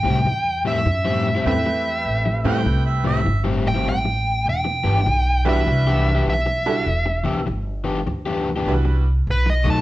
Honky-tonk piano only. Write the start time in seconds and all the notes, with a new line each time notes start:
1.46 A3 C4 E4 G4 B4
2.44 A3 C4 E4 G4 B4
5.45 G3 D4 E4 F#4 B4
6.66 G3 D4 E4 F#4 A4
8.67 G3 D4 E4 F#4 B4